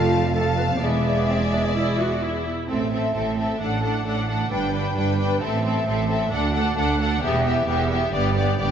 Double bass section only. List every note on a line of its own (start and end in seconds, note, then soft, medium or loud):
0.00 0.78 F1 medium
0.82 2.50 E1 medium
2.70 3.10 A1 soft
3.15 3.55 A1 soft
3.60 4.01 A1 soft
4.05 4.46 A1 soft
4.51 4.91 G1 soft
4.97 5.37 G1 soft
5.42 5.82 A1 medium
5.87 6.27 A1 medium
6.33 6.73 D2 medium
6.77 7.18 D2 medium
7.23 7.63 E1 medium
7.67 8.08 E1 medium
8.13 8.55 G1 medium
8.60 8.71 G1 medium